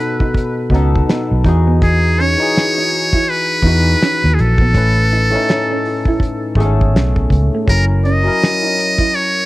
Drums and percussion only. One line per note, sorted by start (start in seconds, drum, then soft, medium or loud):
0.00 closed hi-hat medium
0.20 kick medium
0.34 kick medium
0.34 closed hi-hat medium
0.70 kick medium
0.74 closed hi-hat medium
0.95 kick medium
1.09 finger snap loud
1.09 snare loud
1.09 closed hi-hat loud
1.44 kick loud
1.44 closed hi-hat medium
1.82 kick loud
1.82 closed hi-hat medium
2.19 closed hi-hat medium
2.56 finger snap loud
2.56 snare loud
2.56 closed hi-hat medium
2.93 open hi-hat soft
3.13 kick medium
3.30 closed hi-hat medium
3.63 kick medium
3.67 closed hi-hat medium
4.02 finger snap medium
4.02 snare loud
4.02 closed hi-hat loud
4.39 closed hi-hat medium
4.58 kick loud
4.75 kick loud
4.75 closed hi-hat medium
5.12 closed hi-hat medium
5.49 finger snap loud
5.49 snare loud
5.49 closed hi-hat medium
5.85 open hi-hat soft
6.05 kick medium
6.20 kick medium
6.20 closed hi-hat medium
6.56 kick medium
6.60 closed hi-hat medium
6.81 kick medium
6.96 finger snap loud
6.96 snare loud
6.96 closed hi-hat loud
7.16 kick loud
7.30 kick medium
7.30 closed hi-hat medium
7.68 kick loud
7.68 closed hi-hat medium
8.05 closed hi-hat medium
8.42 finger snap loud
8.42 snare loud
8.42 closed hi-hat medium
8.79 closed hi-hat medium
8.98 kick medium
9.16 closed hi-hat medium